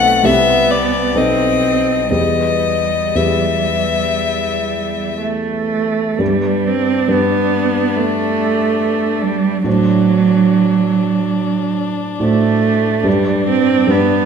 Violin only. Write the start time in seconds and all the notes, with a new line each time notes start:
Already playing: F#5
0.25 E5
0.70 D5
1.18 D#5
2.12 D#5
3.16 E5
6.20 D4
9.68 D4
13.06 D4